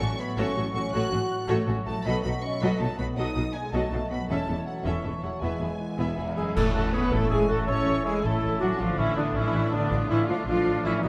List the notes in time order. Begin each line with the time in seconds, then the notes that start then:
Already playing: A2 F#3 C#4 A4 C#5 C#6
0.00 A1 A2 A3 C#4 F#4
0.10 F#4
0.18 B3 C#5 B5
0.29 A4
0.37 A1 A2 A3 C#4 F#4 A4 C#5 F#5 C#6
0.46 C#6
0.55 A1 A2 A3 C#4 F#4 F#5
0.66 C#6
0.74 A1 A2 A3 C#4 F#4 A4 F#5 C#6
0.84 C#6
0.93 A1 A2 A3 F#4 A4 C#5 F#5 F#6
1.03 C#6
1.11 A1 A2 A3 C#4 F#4 F#5
1.21 C#6
1.31 F#5
1.41 A4
1.48 A1 A2 A3 F#4 A4 C#5
1.58 F#4
1.68 A1 A2 A3 C#4 F#4
1.77 F#3
1.86 A1 A2 A3 F#4 A4 A5
1.95 F#3
2.05 B1 B2 F#3 B3 F#4 A4 D#5 B5
2.14 F#3
2.23 B1 B2 F#3 A3 B3 D#4 F#4 A4 B5
2.34 F#4
2.42 C#4 D#5 C#6
2.52 A4
2.61 B1 B2 F#3 B3 F#4 A4 D#5 F#5 B5
2.70 D#6
2.79 B1 B2 F#3 A3 D#4 F#4 A4 F#5 A5
2.88 D#6
2.97 B1 B2 F#3 B3 F#4 B4 F#5 B5
3.08 D#6
3.16 B1 B2 F#3 D#4 F#4 A4 D#5 F#5 D#6
3.35 B1 B2 F#3 D#4 F#4 A4 F#5
3.45 D#6
3.54 G#3 F#5 G#5
3.65 A4
3.73 B1 B2 F#3 A3 F#4 A4 D#5 A5
3.83 F#4
3.90 B1 B2 F#3 A3 D#4 F#4 A4
4.01 F#3
4.09 B1 B2 F#3 A3 B3 F#4 B4 B5
4.20 F#3
4.28 E1 E2 E3 A3 C#4 E4 A4 E5 A5
4.39 A3
4.47 E1 E2 C#4 E4 A4
4.58 C#5
4.65 F#3 A4 F#5
4.76 E5
4.84 E1 E2 E3 C#4 E4 A4 E5 C#6
4.95 A5
5.02 E1 E2 C#4 E4 A4 C#6
5.14 A5
5.21 E1 E2 F#3 C#4 E4 C#5 F#5 C#6
5.33 A5
5.40 E1 E2 E3 G#3 B3 E4 B4 E5 G#5
5.51 B3
5.60 E1 E2 B3 E4 G#4
5.71 B4
5.80 E4
5.90 E5
5.98 E1 E2 B3 E4 B4 E5 B5
6.08 E5
6.16 E1 E2 B3 E4 G#4 B5
6.28 E5
6.36 E1 F#2 G#3 B3 E4 G#4 B4 G#5 B5
6.47 E5
6.55 A1 A2 A3 C#4 E4 A4 A5, concert bass drum, crash
6.66 E3
6.72 A1 A3 F#4 A4 A5
6.84 E4
6.92 B3 G#4 B4 C#5 B5
7.03 A4
7.11 A1 A2 A3 C#4 E4 A4 E5 A5
7.22 C#6
7.30 A1 G#3 E4 G#4 E5 G#5
7.40 C#6
7.48 A1 A3 F#4 A4 E5 A5
7.59 C#6
7.67 A1 A2 A3 C#4 E4 A4 C#5 E5 C#6
7.87 A1 E5
7.95 C#6
8.05 G#3 E4 G#4 E5 G#5
8.14 A4
8.23 A1 A2 A3 C#4 E4 A4 C#5 A5
8.32 E4
8.42 A1 A3
8.51 E3
8.59 A1 F#3 A3 D4 F#4 F#5
8.70 E3
8.77 A1 A2 D3 F3 A3 D4 F4 F5
8.88 D3
8.97 A1 E3 A3 C#4 E4 E5
9.16 D3 B3 D4 D5
9.26 A4
9.34 A1 E3 C#4 E4 E5
9.44 D6
9.53 A1 D5
9.63 D6
9.72 A1 D3 B3 D4 D5
9.82 D6
9.90 A1 F4 D5
10.01 D6
10.09 A1 E3 C#4 E4 D5 E5
10.19 D6
10.26 F3 D4 F4 D5 F5
10.38 A4
10.46 A1 A2 F3 A3 D4 F4 D5 F5
10.57 D4
10.66 A1 A3
10.76 F3
10.83 A1 E3 A3 C#4 E4 E5
10.95 F3
11.01 B1 B2 D#3 F#3 B3 D#4 F#4 D#5